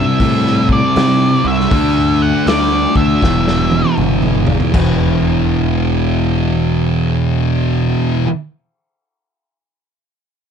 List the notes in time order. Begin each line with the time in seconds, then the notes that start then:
Already playing: C3 G3 C4 E5
0.20 A2 C3 G3, kick, open hi-hat
0.24 C4
0.46 snare
0.69 D5, kick
0.96 C3, snare, open hi-hat
1.44 C2 E5
1.60 snare
1.71 D2 D3 A3, kick, open hi-hat
1.75 D4
2.22 F#5
2.46 D2 D5, snare, open hi-hat
2.96 D2 E5, kick
3.22 E1 E2 B2 E3, kick, snare
3.48 snare
3.71 high tom
3.85 high tom
3.97 G1, mid tom
4.22 mid tom
4.47 floor tom
4.60 floor tom
4.74 E1 E2 B2 E3, kick, crash